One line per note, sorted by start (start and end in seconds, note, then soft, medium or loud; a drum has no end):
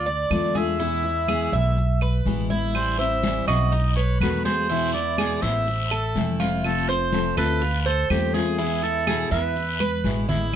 0.00 0.27 D2 medium
0.00 0.32 D5 loud
0.06 0.54 D5 medium
0.06 high conga soft
0.30 1.46 E2 medium
0.30 0.54 D3 medium
0.30 0.55 A3 medium
0.30 0.55 D4 medium
0.30 0.54 F4 medium
0.30 0.59 D5 medium
0.30 high conga medium
0.30 claves medium
0.55 0.80 A3 soft
0.55 0.79 D4 soft
0.55 0.79 F4 medium
0.55 0.79 G#4 medium
0.55 2.27 E5 loud
0.55 high conga medium
0.79 1.03 B2 medium
0.79 1.03 E3 medium
0.79 1.04 G#3 medium
0.79 1.04 B3 medium
0.79 1.27 E4 medium
0.79 1.02 E4 medium
0.79 high conga soft
1.04 1.28 G#3 soft
1.04 1.28 B3 soft
1.04 1.27 E4 soft
1.04 high conga soft
1.28 1.52 B2 medium
1.28 1.52 E3 medium
1.28 1.52 G#3 medium
1.28 1.52 B3 medium
1.28 1.52 E4 medium
1.28 1.52 G#4 medium
1.28 high conga medium
1.28 claves medium
1.52 2.22 B1 medium
1.52 1.77 G#3 soft
1.52 1.77 B3 soft
1.52 1.76 E4 soft
1.52 2.00 E5 medium
1.52 high conga soft
1.77 muted steel-string acoustic guitar stroke medium
1.77 high conga soft
2.01 2.49 B4 medium
2.01 high conga soft
2.01 claves medium
2.25 3.41 A1 medium
2.25 2.49 B2 medium
2.25 2.49 E3 medium
2.25 2.50 G#3 medium
2.25 2.50 B3 medium
2.25 2.49 E4 medium
2.25 high conga medium
2.50 2.74 G#3 soft
2.50 2.74 B3 soft
2.50 2.74 E4 soft
2.50 2.98 E4 medium
2.50 high conga medium
2.74 2.98 E3 medium
2.74 2.98 G3 medium
2.74 2.99 C4 medium
2.74 2.98 E4 medium
2.74 2.98 C5 loud
2.74 long guiro medium
2.74 claves medium
2.99 3.22 G3 soft
2.99 3.23 C4 soft
2.99 3.22 E4 soft
2.99 3.46 C5 medium
2.99 3.44 E5 loud
2.99 high conga soft
3.23 3.47 E3 medium
3.23 3.47 G3 medium
3.23 3.47 C4 medium
3.23 3.47 E4 medium
3.23 high conga loud
3.23 short guiro medium
3.47 4.17 B1 medium
3.47 3.72 G3 soft
3.47 3.72 C4 soft
3.47 3.71 E4 soft
3.47 3.71 F#4 medium
3.47 3.93 D#5 loud
3.47 high conga soft
3.47 short guiro medium
3.47 claves medium
3.72 3.96 D#4 medium
3.72 muted steel-string acoustic guitar stroke medium
3.72 high conga soft
3.72 long guiro medium
3.96 4.44 B4 medium
3.96 4.19 C#5 medium
3.96 high conga soft
4.20 5.36 E2 medium
4.20 4.44 B2 medium
4.20 4.45 D#3 medium
4.20 4.45 A3 medium
4.20 4.45 B3 medium
4.20 4.44 F#4 medium
4.20 4.43 B4 medium
4.20 high conga medium
4.20 short guiro medium
4.20 claves medium
4.45 4.70 A3 soft
4.45 4.69 B3 soft
4.45 4.69 F#4 medium
4.45 4.69 G#4 medium
4.45 4.90 C5 loud
4.45 high conga medium
4.45 short guiro medium
4.69 4.93 B2 medium
4.69 4.93 E3 medium
4.69 4.94 G#3 medium
4.69 4.94 B3 medium
4.69 5.17 E4 medium
4.69 4.94 E4 medium
4.69 high conga soft
4.69 long guiro medium
4.93 5.19 G#3 soft
4.93 5.18 B3 soft
4.93 5.18 E4 soft
4.93 5.44 D5 medium
4.93 high conga soft
5.18 5.42 B2 medium
5.18 5.42 E3 medium
5.18 5.43 G#3 medium
5.18 5.43 B3 medium
5.18 5.42 E4 medium
5.18 5.42 G#4 medium
5.18 high conga medium
5.18 short guiro medium
5.18 claves medium
5.42 6.11 A1 medium
5.42 5.67 G#3 soft
5.42 5.67 B3 soft
5.42 5.66 E4 soft
5.42 5.90 C5 medium
5.42 6.40 E5 loud
5.42 high conga soft
5.42 short guiro medium
5.67 muted steel-string acoustic guitar stroke medium
5.67 high conga soft
5.67 long guiro medium
5.91 6.38 A4 medium
5.91 high conga soft
5.91 claves medium
6.15 7.31 F1 medium
6.15 6.39 E3 medium
6.15 6.39 A3 medium
6.15 6.40 C4 medium
6.15 6.39 E4 medium
6.15 high conga medium
6.15 short guiro medium
6.40 6.64 A3 soft
6.40 6.64 C4 soft
6.40 6.63 E4 medium
6.40 6.87 F4 medium
6.40 high conga medium
6.40 short guiro medium
6.64 6.88 C3 medium
6.64 6.88 F3 medium
6.64 6.88 A3 medium
6.64 6.88 C4 medium
6.64 6.87 F4 medium
6.64 6.91 A4 medium
6.64 high conga soft
6.64 long guiro medium
6.64 claves medium
6.88 7.12 A3 soft
6.88 7.12 C4 soft
6.88 7.12 F4 soft
6.88 7.36 C5 medium
6.88 7.37 C5 loud
6.88 high conga soft
7.12 7.36 C3 medium
7.12 7.36 F3 medium
7.12 7.37 A3 medium
7.12 7.37 C4 medium
7.12 7.36 F4 medium
7.12 high conga loud
7.12 short guiro medium
7.37 8.06 D2 medium
7.37 7.60 A3 soft
7.37 7.61 C4 soft
7.37 7.60 F4 soft
7.37 7.61 A4 medium
7.37 7.77 B4 loud
7.37 high conga soft
7.37 short guiro medium
7.37 claves medium
7.61 7.85 F4 medium
7.61 muted steel-string acoustic guitar stroke medium
7.61 high conga soft
7.61 long guiro medium
7.81 7.88 B4 medium
7.86 8.10 A4 medium
7.86 8.33 C5 medium
7.86 high conga soft
8.10 9.25 E2 medium
8.10 8.33 D3 medium
8.10 8.34 A3 medium
8.10 8.34 C4 medium
8.10 8.33 F4 medium
8.10 8.36 G4 medium
8.10 high conga medium
8.10 short guiro medium
8.10 claves medium
8.34 8.59 A3 soft
8.34 8.58 C4 soft
8.34 8.58 F4 medium
8.34 8.84 G#4 loud
8.34 8.58 G#4 medium
8.34 high conga medium
8.34 short guiro medium
8.58 8.82 B2 medium
8.58 8.82 E3 medium
8.58 8.82 G#3 medium
8.58 8.82 B3 medium
8.58 9.06 E4 medium
8.58 8.81 E4 medium
8.58 high conga soft
8.58 long guiro medium
8.82 9.07 G#3 soft
8.82 9.07 B3 soft
8.82 9.06 E4 soft
8.82 9.31 A4 loud
8.82 high conga soft
9.07 9.31 B2 medium
9.07 9.31 E3 medium
9.07 9.31 G#3 medium
9.07 9.31 B3 medium
9.07 9.30 E4 medium
9.07 9.31 G#4 medium
9.07 high conga medium
9.07 short guiro medium
9.07 claves medium
9.31 10.00 E2 medium
9.31 9.55 G#3 soft
9.31 9.55 B3 soft
9.31 9.55 E4 medium
9.31 10.25 B4 medium
9.31 9.79 E5 medium
9.31 high conga soft
9.31 short guiro medium
9.56 muted steel-string acoustic guitar stroke medium
9.56 high conga soft
9.56 long guiro medium
9.80 10.27 B4 medium
9.80 high conga medium
9.80 claves medium
10.04 10.56 A1 medium
10.04 10.28 B2 medium
10.04 10.28 E3 medium
10.04 10.28 G#3 medium
10.04 10.28 B3 medium
10.04 10.27 E4 medium
10.04 high conga medium
10.04 short guiro medium
10.28 10.53 G#3 soft
10.28 10.52 B3 soft
10.28 10.52 E4 medium
10.28 10.56 E4 medium
10.28 low conga medium
10.28 short guiro medium
10.53 10.56 E3 medium